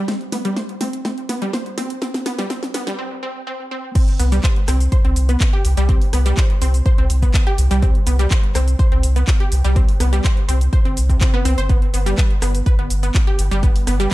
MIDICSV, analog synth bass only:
0, 0, Header, 1, 2, 480
1, 0, Start_track
1, 0, Tempo, 483871
1, 81, Time_signature, 4, 2, 24, 8
1, 14026, End_track
2, 0, Start_track
2, 0, Title_t, "Analog synth bass"
2, 0, Program_c, 0, 38
2, 4163, Note_on_c, 0, 36, 97
2, 4359, Note_off_c, 0, 36, 0
2, 4642, Note_on_c, 0, 36, 78
2, 4839, Note_off_c, 0, 36, 0
2, 5007, Note_on_c, 0, 36, 95
2, 5100, Note_off_c, 0, 36, 0
2, 5122, Note_on_c, 0, 36, 90
2, 5319, Note_off_c, 0, 36, 0
2, 5603, Note_on_c, 0, 36, 92
2, 5704, Note_off_c, 0, 36, 0
2, 5727, Note_on_c, 0, 36, 86
2, 5920, Note_off_c, 0, 36, 0
2, 6083, Note_on_c, 0, 36, 100
2, 6279, Note_off_c, 0, 36, 0
2, 6562, Note_on_c, 0, 36, 80
2, 6759, Note_off_c, 0, 36, 0
2, 6927, Note_on_c, 0, 36, 93
2, 7020, Note_off_c, 0, 36, 0
2, 7042, Note_on_c, 0, 36, 93
2, 7239, Note_off_c, 0, 36, 0
2, 7523, Note_on_c, 0, 36, 92
2, 7624, Note_off_c, 0, 36, 0
2, 7647, Note_on_c, 0, 36, 88
2, 7840, Note_off_c, 0, 36, 0
2, 8003, Note_on_c, 0, 36, 101
2, 8199, Note_off_c, 0, 36, 0
2, 8482, Note_on_c, 0, 36, 83
2, 8679, Note_off_c, 0, 36, 0
2, 8848, Note_on_c, 0, 36, 94
2, 8941, Note_off_c, 0, 36, 0
2, 8964, Note_on_c, 0, 36, 91
2, 9160, Note_off_c, 0, 36, 0
2, 9444, Note_on_c, 0, 36, 93
2, 9544, Note_off_c, 0, 36, 0
2, 9569, Note_on_c, 0, 36, 86
2, 9761, Note_off_c, 0, 36, 0
2, 9923, Note_on_c, 0, 36, 99
2, 10119, Note_off_c, 0, 36, 0
2, 10402, Note_on_c, 0, 36, 81
2, 10598, Note_off_c, 0, 36, 0
2, 10766, Note_on_c, 0, 31, 81
2, 10880, Note_on_c, 0, 36, 96
2, 10895, Note_off_c, 0, 31, 0
2, 11078, Note_off_c, 0, 36, 0
2, 11361, Note_on_c, 0, 36, 99
2, 11463, Note_off_c, 0, 36, 0
2, 11486, Note_on_c, 0, 31, 102
2, 11679, Note_off_c, 0, 31, 0
2, 11842, Note_on_c, 0, 31, 97
2, 12039, Note_off_c, 0, 31, 0
2, 12321, Note_on_c, 0, 31, 79
2, 12518, Note_off_c, 0, 31, 0
2, 12687, Note_on_c, 0, 31, 95
2, 12781, Note_off_c, 0, 31, 0
2, 12803, Note_on_c, 0, 31, 91
2, 12999, Note_off_c, 0, 31, 0
2, 13282, Note_on_c, 0, 31, 94
2, 13383, Note_off_c, 0, 31, 0
2, 13407, Note_on_c, 0, 31, 88
2, 13600, Note_off_c, 0, 31, 0
2, 13762, Note_on_c, 0, 31, 98
2, 13958, Note_off_c, 0, 31, 0
2, 14026, End_track
0, 0, End_of_file